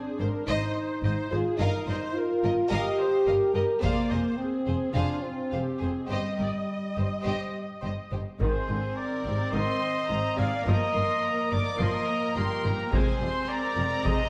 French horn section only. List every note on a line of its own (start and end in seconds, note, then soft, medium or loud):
0.00 0.48 D4 medium
0.47 1.29 D#4 medium
1.31 1.59 F4 medium
1.58 2.14 D#4 medium
2.14 2.71 F4 medium
2.70 3.54 G4 medium
3.55 3.83 A#4 medium
3.82 4.39 A#3 medium
4.37 4.95 C4 medium
4.94 5.23 D4 medium
5.22 6.09 C4 medium
6.09 7.82 G3 medium
8.41 10.63 D#3 soft
8.41 10.63 C4 soft
10.65 12.89 F3 soft
10.65 12.89 A#3 soft
12.93 14.29 G#3 medium
12.93 14.29 C4 medium